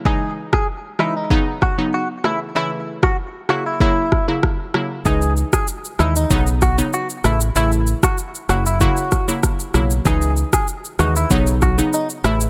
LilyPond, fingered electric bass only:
\new Staff \with { instrumentName = "Fingered electric bass" } { \clef bass \time 4/4 \key cis \minor \tempo 4 = 96 r1 | r1 | cis,8. r8. dis,8 b,,4 r8 a,,8 | a,,8. r8. fis,,8. r4 r16 b,,8 |
cis,8. r8. dis,8 b,,4 r8 a,,8 | }